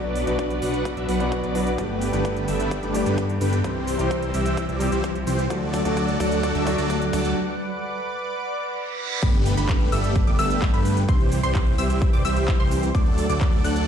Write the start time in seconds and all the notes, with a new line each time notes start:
Already playing: B1 B2 F#3 B3 D4 F#4 B4 D5 F#5 D6, riser
0.16 open hi-hat
0.26 B1 B2 F#3 B3 D4 F#4 B4 D5, closed hi-hat
0.39 kick, closed hi-hat
0.50 closed hi-hat
0.62 B1 F#3 B3 D4 B4 F#5, open hi-hat
0.74 closed hi-hat
0.85 kick, closed hi-hat
0.97 B1 F#3 B3 D4 B4 E5, closed hi-hat
1.08 B1 F#3 B3 D4 B4 F#5, open hi-hat
1.20 B2 F#3 B3 D4 B4, closed hi-hat
1.32 kick, closed hi-hat
1.43 B1 F#3 B3 D4 B4 D5, closed hi-hat
1.54 F#3 B3 D4 F#4, open hi-hat
1.67 closed hi-hat
1.78 G1 G2 D3 A3 B3 D4 G4 B4 G5 A5, kick, closed hi-hat, shaker
2.02 open hi-hat, shaker
2.12 G1 G2 D3 A3 B3 D4 G4 B4, closed hi-hat, shaker
2.25 kick, closed hi-hat, shaker
2.36 closed hi-hat
2.48 G1 D3 A3 B3 G4 E5, open hi-hat, shaker
2.60 closed hi-hat, shaker
2.71 kick, closed hi-hat, shaker
2.83 G1 D3 A3 B3 G4 D5, closed hi-hat
2.93 G2 A3 B3 D4 G4, open hi-hat, shaker
3.06 G2 D3 A3 B3 G4 B4, closed hi-hat, shaker
3.18 kick, closed hi-hat, shaker
3.29 closed hi-hat
3.41 G2 D3 A3 B3 G4 B4, open hi-hat, shaker
3.53 closed hi-hat, shaker
3.64 C2 C3 E3 G3 C4 E4 G4 C5 E5 E6, kick, closed hi-hat, shaker
3.88 open hi-hat, shaker
3.98 C2 C3 E3 G3 C4 E4 G4 C5, closed hi-hat, shaker
4.11 kick, closed hi-hat, shaker
4.22 closed hi-hat
4.34 C2 E3 G3 C4 G4 E5, open hi-hat, shaker
4.46 closed hi-hat, shaker
4.57 kick, closed hi-hat, shaker
4.69 C2 E3 G3 C4 G4 D5, closed hi-hat
4.79 C3 G3 C4 E4 G4, open hi-hat, shaker
4.92 C2 E3 G3 C4 G4 C5, closed hi-hat, shaker
5.04 kick, closed hi-hat, shaker
5.15 closed hi-hat
5.27 C2 E3 G3 C4 G4 C5, open hi-hat, shaker
5.39 closed hi-hat, shaker
5.50 D2 F#3 A3 D4 F#4 A4 D5 F#5 D6, kick, closed hi-hat, shaker
5.74 kick, open hi-hat, shaker
5.84 D2 F#3 A3 D4 F#4 A4 D5, closed hi-hat, shaker
5.97 kick, closed hi-hat, shaker
6.08 closed hi-hat
6.20 D2 F#3 A3 D4 A4 F#5, kick, open hi-hat, shaker
6.32 closed hi-hat, shaker
6.43 kick, closed hi-hat, shaker
6.55 D2 F#3 A3 D4 A4 E5, closed hi-hat
6.65 F#3 A3 D4 F#4, kick, open hi-hat, shaker
6.78 D2 F#3 A3 D4 A4 D5, closed hi-hat, shaker
6.90 kick, closed hi-hat, shaker
7.02 closed hi-hat
7.13 D2 F#3 A3 D4 A4 D5, kick, open hi-hat, shaker
7.25 closed hi-hat, shaker
7.36 B4 D5 D6
8.29 reverse cymbal
9.22 G1 D3 A3 B3 G4 A4 B4 D5 G5 B5, kick, closed hi-hat, crash, impact, shaker
9.34 closed hi-hat
9.46 open hi-hat, shaker
9.57 G1 D3 A3 B3 G4 B4 B5, closed hi-hat, shaker
9.69 kick, clap, closed hi-hat, shaker
9.81 closed hi-hat
9.92 G1 D3 A3 B3 G4 E5 E6, open hi-hat, shaker
10.04 closed hi-hat, shaker
10.16 kick, closed hi-hat, shaker
10.27 G1 D3 A3 B3 G4 D5 D6, closed hi-hat
10.39 G1 D3 A3 B3 G4 E5 E6, open hi-hat, shaker
10.50 closed hi-hat, shaker
10.62 kick, clap, closed hi-hat, shaker
10.74 G2 D3 A3 B3 G4 B4 B5, closed hi-hat
10.85 open hi-hat, shaker
10.97 closed hi-hat, shaker
11.09 C2 E3 G3 C4 E4 G4 C5 C6, kick, closed hi-hat, shaker
11.20 closed hi-hat
11.32 open hi-hat, shaker
11.43 C2 E3 G3 C4 G4 C5 C6, closed hi-hat, shaker
11.55 kick, clap, closed hi-hat, shaker
11.67 closed hi-hat
11.78 C2 E3 G3 C4 G4 E5 E6, open hi-hat, shaker
11.90 closed hi-hat, shaker
12.02 kick, closed hi-hat, shaker
12.13 C2 E3 G3 C4 G4 D5 D6, open hi-hat
12.25 C2 E3 G3 C4 G4 E5 E6, open hi-hat, shaker
12.36 closed hi-hat, shaker
12.48 kick, clap, closed hi-hat, shaker
12.60 C2 E3 G3 C4 G4 C5 C6, closed hi-hat
12.71 open hi-hat, shaker
12.83 closed hi-hat, shaker
12.95 D2 F#3 A3 D4 F#4 A4 D5 A5 D6, kick, closed hi-hat, shaker
13.06 closed hi-hat
13.18 open hi-hat, shaker
13.29 D2 F#3 A3 D4 A4 D5 D6, closed hi-hat, shaker
13.41 kick, clap, closed hi-hat, shaker
13.53 closed hi-hat
13.64 D2 F#3 A3 D4 A4 F#5 F#6, open hi-hat, shaker
13.76 closed hi-hat, shaker